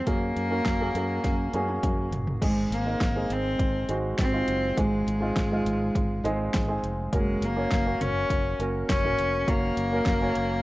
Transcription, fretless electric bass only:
0.07 0.31 F#2 medium
0.36 0.60 F#2 medium
0.66 0.90 F#2 medium
0.94 1.19 F#2 medium
1.24 1.48 F#2 medium
1.53 1.78 F#2 medium
1.83 2.07 F#2 medium
2.11 2.36 F#1 medium
2.42 2.66 G#1 medium
2.70 2.95 G#1 medium
3.00 3.25 G#1 medium
3.30 3.54 G#1 medium
3.59 3.83 G#1 medium
3.89 4.13 G#1 medium
4.18 4.42 G#1 medium
4.48 4.72 F#1 medium
4.77 5.01 G#1 medium
5.06 5.30 G#1 medium
5.36 5.60 G#1 medium
5.65 5.89 G#1 medium
5.95 6.19 G#1 medium
6.24 6.48 G#1 medium
6.54 6.78 G#1 medium
6.83 7.07 F1 medium
7.13 7.37 F#1 medium
7.41 7.66 F#1 medium
7.71 7.95 F#1 medium
8.01 8.25 F#1 medium
8.30 8.54 F#1 medium
8.59 8.83 F#1 medium
8.89 9.13 F#1 medium
9.19 9.43 F1 medium
9.48 9.72 F#1 medium
9.77 10.01 F#1 medium
10.06 10.30 F#1 medium
10.36 10.60 F#1 medium

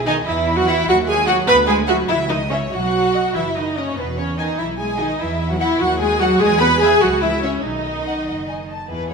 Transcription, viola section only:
0.06 0.14 D#4 loud
0.26 0.56 E4 medium
0.57 0.67 F#4 loud
0.68 0.88 E4 loud
0.89 0.96 F#4 loud
1.08 1.27 G#4 loud
1.27 1.35 F#4 loud
1.47 1.55 B4 loud
1.68 1.76 G#4 loud
1.88 1.96 F#4 loud
2.09 2.17 E4 loud
2.29 2.37 D#4 medium
2.50 2.58 C#4 medium
2.72 3.33 F#4 medium
3.35 3.56 E4 medium
3.56 3.76 D#4 medium
3.78 3.98 C#4 medium
3.98 4.06 B3 medium
4.18 4.38 C#4 medium
4.38 4.58 D#4 medium
4.59 4.79 E4 medium
4.80 4.99 G#4 medium
5.00 5.20 D#4 medium
5.20 5.50 E4 medium
5.52 5.61 F#4 medium
5.59 5.79 E4 loud
5.79 5.99 F#4 loud
5.99 6.19 G#4 loud
6.20 6.40 F#4 loud
6.40 6.60 G#4 loud
6.61 6.81 B4 loud
6.80 7.00 G#4 loud
7.02 7.22 F#4 loud
7.21 7.42 E4 medium
7.43 7.64 C#4 medium
7.63 8.69 D#4 medium
8.91 9.09 E3 soft
8.91 9.09 B3 soft

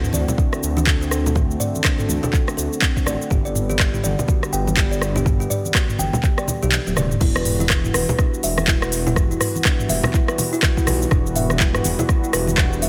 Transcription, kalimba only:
0.14 0.27 D5 medium
0.38 0.52 D4 medium
0.53 0.62 A4 medium
0.77 0.86 D4 loud
1.01 1.07 D4 medium
1.11 1.25 A4 medium
1.35 1.49 C4 medium
1.60 1.73 D5 medium
1.84 1.98 D4 medium
1.99 2.08 A4 medium
2.23 2.32 D4 loud
2.48 2.53 D4 medium
2.57 2.71 A4 medium
2.82 2.95 C4 medium
3.06 3.19 D5 medium
3.30 3.45 G4 medium
3.45 3.54 D5 medium
3.70 3.79 G4 loud
3.94 3.99 G4 medium
4.04 4.18 D5 medium
4.28 4.41 F#4 medium
4.53 4.66 G5 medium
4.77 4.91 G4 medium
4.91 5.01 D5 medium
5.16 5.25 G4 loud
5.40 5.46 G4 medium
5.50 5.64 D5 medium
5.75 5.88 F#4 medium
5.99 6.12 G5 medium
6.24 6.37 G4 medium
6.38 6.47 D5 medium
6.63 6.71 G4 loud
6.87 6.92 G4 medium
6.97 7.11 D5 medium
7.21 7.35 E4 medium
7.36 7.45 B4 medium
7.60 7.69 E4 loud
7.85 7.90 E4 medium
7.94 8.08 B4 medium
8.19 8.32 D4 medium
8.44 8.57 E5 medium
8.68 8.82 E4 medium
8.83 8.91 B4 medium
9.07 9.16 E4 loud
9.31 9.36 E4 medium
9.41 9.55 B4 medium
9.65 9.78 D4 medium
9.90 10.03 E5 medium
10.14 10.28 E4 medium
10.29 10.37 B4 medium
10.53 10.62 E4 loud
10.77 10.83 E4 medium
10.87 11.01 B4 medium
11.12 11.25 D4 medium
11.36 11.49 E5 medium
11.60 11.74 E4 medium
11.75 11.84 B4 medium
11.99 12.08 E4 loud
12.24 12.29 E4 medium
12.34 12.47 B4 medium
12.58 12.71 D4 medium
12.82 12.89 E5 medium

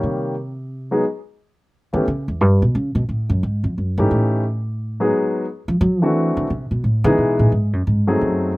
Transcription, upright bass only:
0.03 1.01 C3 medium
1.93 2.05 D#3 medium
2.08 2.27 C#3 medium
2.28 2.41 E2 medium
2.41 2.62 G2 medium
2.62 2.74 B2 medium
2.75 2.94 C#3 medium
2.95 3.07 B2 medium
3.09 3.29 A2 medium
3.30 3.42 F#2 medium
3.43 3.63 G#2 medium
3.64 3.76 F2 medium
3.78 3.97 F#2 medium
3.98 4.10 G#2 medium
4.11 5.09 A2 medium
5.68 5.80 F3 medium
5.81 6.02 F#3 loud
6.02 6.16 D#3 loud
6.16 6.36 E3 medium
6.37 6.49 D3 medium
6.50 6.70 C3 medium
6.71 6.83 B2 medium
6.84 7.04 A2 medium
7.04 7.16 C#3 loud
7.18 7.39 B2 medium
7.39 7.51 A2 medium
7.52 7.73 G#2 medium
7.73 7.85 F#2 medium
7.87 8.07 G#2 medium
8.07 8.19 G2 medium
8.21 8.52 F#2 medium

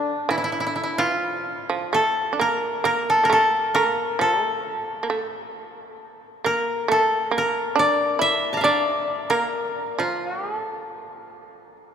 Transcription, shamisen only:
0.00 0.24 D3 soft
0.29 0.72 E3 medium
0.72 0.95 D3 medium
0.99 1.15 E3 soft
1.15 1.65 F3 soft
1.70 1.91 F3 medium
1.93 2.29 A3 medium
2.33 2.39 D4 soft
2.40 2.81 A#3 medium
2.84 3.19 A#3 medium
3.23 3.29 A#3 soft
3.30 3.71 A3 medium
3.75 4.16 A#3 medium
4.19 4.45 F3 medium
4.45 4.97 A3 medium
5.03 5.09 A#3 soft
5.10 5.51 A3 medium
6.44 6.85 A#3 medium
6.88 7.29 A3 medium
7.31 7.72 A#3 medium
7.76 8.16 D4 medium
8.19 8.60 E4 medium
8.64 9.26 D4 medium
9.30 9.94 A#3 medium
9.99 10.56 F3 medium
10.56 11.76 A3 medium

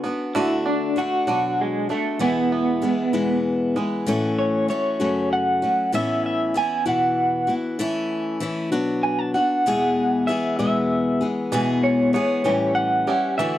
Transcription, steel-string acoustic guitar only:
0.04 0.35 B3 soft
0.04 0.35 D4 soft
0.04 0.35 F#4 medium
0.35 0.95 D3 medium
0.35 0.96 A3 medium
0.35 0.97 D4 medium
0.35 0.98 F#4 medium
0.96 1.27 D3 medium
0.96 1.28 A3 medium
0.96 1.27 D4 medium
0.96 1.26 F#4 medium
1.27 1.91 B2 medium
1.27 1.90 F#3 medium
1.27 1.89 D4 medium
1.27 1.88 F#4 medium
1.89 2.20 A3 soft
1.89 2.20 D4 soft
1.89 2.20 F#4 soft
2.19 2.82 E2 medium
2.19 2.82 B2 medium
2.19 2.80 E3 medium
2.19 2.81 G#3 medium
2.19 2.82 B3 medium
2.19 2.83 E4 medium
2.82 3.13 E3 medium
2.82 3.13 G#3 medium
2.82 3.13 B3 medium
2.82 3.12 E4 medium
3.13 3.77 E2 medium
3.13 3.76 B2 medium
3.13 3.76 E3 medium
3.13 3.76 G#3 medium
3.13 3.75 B3 medium
3.13 3.75 E4 medium
3.76 4.06 E3 soft
3.76 4.07 G#3 soft
3.76 4.07 B3 soft
3.76 4.07 E4 medium
4.06 4.69 A2 medium
4.06 4.67 E3 medium
4.06 4.69 A3 medium
4.06 4.69 C#4 medium
4.06 4.70 F#4 loud
4.68 5.00 E3 medium
4.68 5.00 A3 medium
4.68 4.99 C#4 medium
4.68 4.99 F#4 medium
5.00 5.63 F#2 medium
5.00 5.63 C#3 medium
5.00 5.63 F#3 medium
5.00 5.63 A3 medium
5.00 5.62 C#4 medium
5.00 5.61 F#4 medium
5.62 5.93 F#3 soft
5.62 5.93 A3 soft
5.62 5.93 C#4 soft
5.62 5.93 F#4 medium
5.92 6.55 A2 medium
5.92 6.53 E3 medium
5.92 6.54 B3 medium
5.92 6.55 C#4 medium
5.92 6.55 E4 medium
6.54 6.86 E3 medium
6.54 6.85 B3 medium
6.54 6.85 C#4 medium
6.54 6.84 E4 medium
6.86 7.49 E2 medium
6.86 7.49 B2 medium
6.86 7.49 E3 medium
6.86 7.48 B3 medium
6.86 7.47 E4 medium
6.86 7.46 F#4 medium
7.47 7.78 E3 soft
7.47 7.79 B3 soft
7.47 7.79 E4 soft
7.47 7.79 F#4 medium
7.79 8.39 E3 medium
7.79 8.40 A3 loud
7.79 8.41 C#4 loud
7.79 8.42 E4 loud
8.40 8.72 E3 medium
8.40 8.72 A3 medium
8.40 8.72 C#4 medium
8.40 8.71 E4 medium
8.72 9.35 B2 medium
8.72 9.35 F#3 medium
8.72 9.37 B3 medium
8.72 9.34 D4 medium
8.72 9.33 F#4 medium
9.34 9.66 B3 soft
9.34 9.66 D4 soft
9.34 9.65 F#4 medium
9.66 10.28 E2 medium
9.66 10.28 B2 medium
9.66 10.27 E3 medium
9.66 10.27 G#3 medium
9.66 10.28 B3 medium
9.66 10.29 G#4 medium
10.28 10.58 E3 medium
10.28 10.58 G#3 medium
10.28 10.58 B3 medium
10.28 10.58 G#4 medium
10.59 11.22 E2 medium
10.59 11.22 B2 medium
10.59 11.23 E3 medium
10.59 11.21 G#3 medium
10.59 11.20 B3 medium
10.59 11.19 G#4 medium
11.21 11.51 E3 soft
11.21 11.52 G#3 soft
11.21 11.52 B3 soft
11.21 11.52 G#4 soft
11.52 12.14 E2 medium
11.52 12.14 B2 medium
11.52 12.13 E3 medium
11.52 12.13 G#3 loud
11.52 12.14 B3 medium
11.52 12.15 G#4 medium
12.13 12.45 E3 medium
12.13 12.45 G#3 medium
12.13 12.44 B3 medium
12.13 12.44 G#4 medium
12.44 13.08 A2 medium
12.44 13.08 E3 medium
12.44 13.08 G3 medium
12.44 13.07 C#4 medium
12.44 13.06 G4 medium
13.07 13.39 G3 soft
13.07 13.39 C#4 soft
13.07 13.38 G4 medium
13.39 13.58 D3 medium
13.39 13.58 E3 medium
13.39 13.58 A3 medium
13.39 13.58 D4 medium
13.39 13.58 F#4 medium

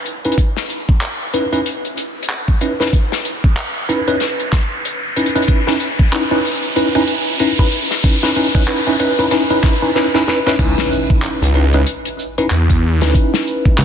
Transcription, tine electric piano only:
0.25 0.38 C#4 medium
0.25 0.38 D#4 medium
0.25 0.38 E4 medium
0.25 0.38 B4 medium
1.34 1.44 C#4 medium
1.34 1.44 D#4 medium
1.34 1.44 E4 medium
1.34 1.44 B4 medium
1.53 1.60 C#4 medium
1.53 1.60 D#4 medium
1.53 1.60 E4 medium
1.53 1.60 B4 loud
2.61 2.72 C#4 medium
2.61 2.72 D#4 medium
2.61 2.72 E4 medium
2.61 2.72 B4 medium
2.80 2.87 C#4 medium
2.80 2.87 D#4 medium
2.80 2.87 E4 medium
2.80 2.87 B4 loud
3.89 3.99 C#4 medium
3.89 3.99 D#4 medium
3.89 3.99 E4 medium
3.89 3.99 B4 medium
4.08 4.15 C#4 medium
4.08 4.15 D#4 medium
4.08 4.15 E4 medium
4.08 4.15 B4 loud
5.16 5.27 C#4 medium
5.16 5.27 D#4 medium
5.16 5.27 E4 medium
5.16 5.27 B4 medium
5.35 5.43 C#4 loud
5.35 5.43 D#4 medium
5.35 5.43 E4 medium
5.35 5.43 B4 loud
5.48 5.59 C#4 medium
5.48 5.59 D#4 medium
5.48 5.59 E4 medium
5.48 5.59 B4 medium
5.67 5.74 C#4 medium
5.67 5.74 D#4 medium
5.67 5.74 E4 medium
5.67 5.74 B4 loud
6.12 6.23 C#4 medium
6.12 6.23 D#4 medium
6.12 6.23 E4 medium
6.12 6.23 B4 medium
6.31 6.38 C#4 loud
6.31 6.38 D#4 medium
6.31 6.38 E4 medium
6.31 6.38 B4 loud
6.76 6.87 C#4 medium
6.76 6.87 D#4 medium
6.76 6.87 E4 medium
6.76 6.87 B4 loud
6.95 7.02 C#4 loud
6.95 7.02 D#4 medium
6.95 7.02 E4 medium
6.95 7.02 B4 loud
7.40 7.50 C#4 medium
7.40 7.50 D#4 medium
7.40 7.50 E4 medium
7.40 7.50 B4 medium
7.59 7.66 C#4 loud
7.59 7.66 D#4 medium
7.59 7.66 E4 medium
7.59 7.66 B4 loud
8.04 8.14 C#4 medium
8.04 8.14 D#4 medium
8.04 8.14 E4 medium
8.04 8.14 B4 medium
8.23 8.30 C#4 loud
8.23 8.30 D#4 medium
8.23 8.30 E4 medium
8.23 8.30 B4 loud
8.36 8.46 C#4 medium
8.36 8.46 D#4 medium
8.36 8.46 E4 medium
8.36 8.46 B4 medium
8.55 8.62 C#4 loud
8.55 8.62 D#4 medium
8.55 8.62 E4 loud
8.55 8.62 B4 loud
8.68 8.78 C#4 medium
8.68 8.78 D#4 medium
8.68 8.78 E4 medium
8.68 8.78 B4 loud
8.87 8.94 C#4 loud
8.87 8.94 D#4 medium
8.87 8.94 E4 medium
8.87 8.94 B4 loud
9.00 9.10 C#4 medium
9.00 9.10 D#4 medium
9.00 9.10 E4 medium
9.00 9.10 B4 medium
9.19 9.26 C#4 loud
9.19 9.26 D#4 medium
9.19 9.26 E4 loud
9.19 9.26 B4 loud
9.31 9.42 C#4 medium
9.31 9.42 D#4 medium
9.31 9.42 E4 medium
9.31 9.42 B4 loud
9.50 9.57 C#4 loud
9.50 9.58 D#4 medium
9.50 9.57 E4 loud
9.50 9.57 B4 loud
9.63 9.74 C#4 medium
9.63 9.74 E4 medium
9.63 9.74 B4 loud
9.82 9.89 C#4 loud
9.82 9.89 D#4 loud
9.82 9.89 E4 medium
9.82 9.89 B4 loud
9.95 10.06 C#4 medium
9.95 10.06 D#4 medium
9.95 10.06 E4 medium
9.95 10.06 B4 loud
10.14 10.21 C#4 loud
10.14 10.21 D#4 medium
10.14 10.21 E4 loud
10.14 10.21 B4 loud
10.28 10.38 C#4 medium
10.28 10.38 D#4 medium
10.28 10.38 E4 medium
10.28 10.38 B4 loud
10.46 10.53 C#4 loud
10.46 10.53 D#4 medium
10.46 10.53 E4 medium
10.46 10.53 B4 loud
10.59 11.50 C#4 loud
10.59 11.50 D#4 medium
10.59 11.50 E4 medium
10.59 11.50 B4 loud
11.55 11.65 C#4 medium
11.55 11.65 D#4 medium
11.55 11.65 E4 medium
11.55 11.65 B4 medium
11.74 11.81 C#4 loud
11.74 11.81 D#4 medium
11.74 11.81 E4 medium
11.74 11.81 B4 loud
12.38 12.45 C#4 medium
12.38 12.45 D#4 medium
12.38 12.45 E4 medium
12.38 12.45 B4 medium
13.02 13.85 C#4 medium
13.02 13.85 D#4 medium
13.02 13.85 E4 medium
13.02 13.85 B4 loud

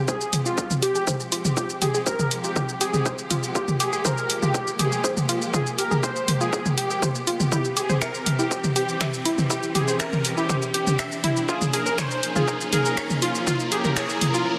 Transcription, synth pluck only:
0.08 0.17 C5 medium
0.46 0.51 F4 medium
0.82 0.88 G4 loud
0.95 1.00 G#4 medium
1.07 1.16 C5 loud
1.32 1.44 F4 loud
1.57 1.66 F4 loud
1.82 1.87 G4 loud
1.95 2.03 G#4 loud
2.06 2.15 C5 loud
2.44 2.49 F4 medium
2.81 2.86 G4 loud
2.94 2.99 G#4 medium
3.06 3.14 C5 loud
3.31 3.43 F4 loud
3.55 3.64 F4 loud
3.80 3.85 G4 loud
3.93 4.01 G#4 loud
4.05 4.14 C5 loud
4.42 4.47 F4 medium
4.79 4.85 G4 loud
4.92 4.97 G#4 medium
5.04 5.13 C5 loud
5.29 5.41 F4 loud
5.54 5.62 F4 loud
5.78 5.84 G4 loud
5.91 5.99 G#4 loud
6.03 6.12 C5 loud
6.41 6.46 F4 medium
6.78 6.83 G4 loud
6.90 6.95 G#4 medium
7.02 7.11 C5 loud
7.27 7.39 F4 loud
7.52 7.61 E4 loud
7.77 7.82 G4 loud
7.89 7.98 C5 loud
8.01 8.10 E5 loud
8.39 8.44 E4 medium
8.51 8.56 C5 medium
8.76 8.81 G4 loud
9.01 9.09 E5 loud
9.26 9.38 E4 loud
9.50 9.59 E4 loud
9.75 9.80 G4 loud
9.88 9.96 C5 loud
10.00 10.09 E5 loud
10.37 10.42 E4 medium
10.49 10.55 C5 medium
10.74 10.79 G4 loud
10.99 11.08 E5 loud
11.24 11.36 E4 loud
11.49 11.57 F4 loud
11.73 11.79 G#4 loud
11.86 11.95 A#4 loud
11.98 12.07 C#5 loud
12.36 12.41 F4 medium
12.48 12.53 A#4 medium
12.73 12.78 G#4 loud
12.97 13.06 C#5 loud
13.22 13.34 F4 loud
13.47 13.56 F4 loud
13.72 13.77 G#4 loud
13.85 13.93 A#4 loud
13.97 14.05 C#5 loud
14.34 14.39 F4 medium

